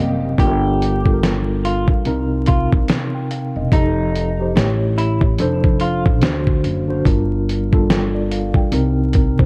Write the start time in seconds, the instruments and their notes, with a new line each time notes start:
Already playing: upright bass F#1, tine electric piano C3 C4 A#4 D#5 F5, string section D#3 G3 A#3 C4 G4
0.38 upright bass G1, tine electric piano G3 D4 F4 A#4, clean electric guitar G4, kick, closed hi-hat
0.82 closed hi-hat
1.04 tine electric piano G3 D4 F4 A4, kick
1.14 tine electric piano A#4
1.23 snare, closed hi-hat
1.65 clean electric guitar F4, closed hi-hat
1.88 kick
2.05 upright bass C2, tine electric piano C3 C4 D#4 A#4, closed hi-hat
2.46 clean electric guitar F4, kick, closed hi-hat
2.72 upright bass C2, kick
2.88 snare, closed hi-hat
3.15 tine electric piano G5
3.31 tine electric piano F5, closed hi-hat
3.56 upright bass E1, tine electric piano D#5
3.72 upright bass F1, tine electric piano F3 D#4 G4 A4, clean electric guitar D#4, kick, closed hi-hat
4.16 closed hi-hat
4.39 tine electric piano F3 D#4 G4 C5
4.55 upright bass A1, tine electric piano A3 E4 G4 C#5, snare, closed hi-hat
4.98 clean electric guitar E4, closed hi-hat
5.21 kick
5.38 upright bass F1, tine electric piano F3 D4 A4 C5, closed hi-hat
5.64 kick
5.80 clean electric guitar F4, closed hi-hat
6.06 upright bass A1, kick
6.21 upright bass D2, tine electric piano D3 D4 F#4 C5, snare, closed hi-hat
6.47 kick
6.64 upright bass F#1, closed hi-hat
6.87 tine electric piano D3 D4 F#4 C5
7.05 upright bass G1, tine electric piano G3 D4 F4 A#4, kick, closed hi-hat
7.49 closed hi-hat
7.71 tine electric piano G3 D4 F4 A4, kick
7.90 snare, closed hi-hat
8.14 tine electric piano D5
8.31 tine electric piano F5, closed hi-hat
8.54 tine electric piano G5, kick
8.71 upright bass C2, tine electric piano C3 C4 D#4 A#4, closed hi-hat
9.13 tine electric piano A#4, kick, closed hi-hat
9.39 upright bass C2, tine electric piano C5, kick